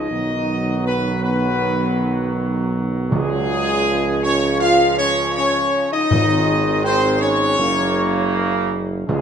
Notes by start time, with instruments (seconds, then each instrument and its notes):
Already playing: french horn section D#4, trumpet section D#5
0.11 tuba B1, trombone section D#3 F#3
0.85 french horn section B3, trumpet section B4
1.23 french horn section B3, trumpet section B4
3.11 tuba C#2, trombone section C#3, timpani C#3, french horn section G#3, trumpet section G#4
3.86 trombone section F3
4.23 french horn section C#4, trumpet section C#5
4.60 french horn section F4, trumpet section F5
4.97 french horn section C#4, trumpet section C#5
5.35 french horn section C#4, trumpet section C#5
5.91 french horn section D#4, trumpet section D#5
6.10 tuba G#1, timpani G#2, trombone section D#3 G#3
6.84 french horn section C4, trumpet section C5
7.21 french horn section C#4, trumpet section C#5
7.59 tuba F#1, trombone section C#3 A#3
9.08 tuba C#2, timpani C#3, trombone section C#3 F3, french horn section G#3, trumpet section G#4